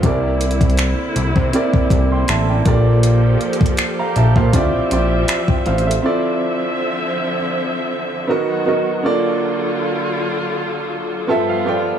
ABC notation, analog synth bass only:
X:1
M:4/4
L:1/16
Q:"Swing 16ths" 1/4=80
K:Dm
V:1 name="Analog synth bass" clef=bass
C,,4- C,, z C,, C, z C,, C,,2 A,,,2 B,,,2- | B,,,2 z4 B,,, B,, D,, B,,, B,,,2 z2 A,,,2 | z16 | z16 |]